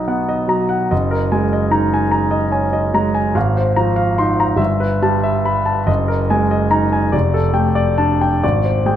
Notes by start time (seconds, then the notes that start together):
Already playing: B1 F#3 D#4 A#4 D#5 F#5 A#5
0.08 B3 F#5
0.29 D#5
0.48 F#3 A#5
0.69 F#5
0.91 F#1 D#5
1.11 A#4
1.32 G#3 G#5
1.53 D#5
1.71 D#4 A#5
1.94 G#5
2.11 A#5
2.31 D#5
2.52 C#4 G#5
2.73 D#5
2.94 G#3 A#5
3.15 G#5
3.35 G#1 F5
3.57 C5
3.76 F3 A#5
3.96 F5
4.18 D#4 C6
4.40 A#5
4.56 G1 E5
4.80 B4
5.02 G3 A5
5.23 E5
5.45 B5
5.66 A5
5.87 F#1 D#5
6.08 A#4
6.30 G#3 G#5
6.51 D#5
6.71 D#4 A#5
6.93 G#5
7.12 F1 D5
7.34 A4
7.53 A3 G5
7.75 D5
7.98 D4 A5
8.21 G5
8.43 G#1 D5
8.65 C5
8.86 G#3 G5